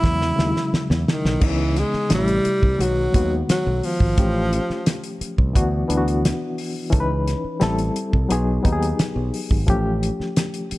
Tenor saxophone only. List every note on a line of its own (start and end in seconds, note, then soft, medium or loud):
0.00 1.08 E4 loud
1.10 1.46 D#3 medium
1.45 1.80 E3 medium
1.79 2.12 G#3 medium
2.14 2.84 G3 loud
2.82 3.33 F#3 medium
3.50 3.86 F#3 medium
3.84 5.21 F3 medium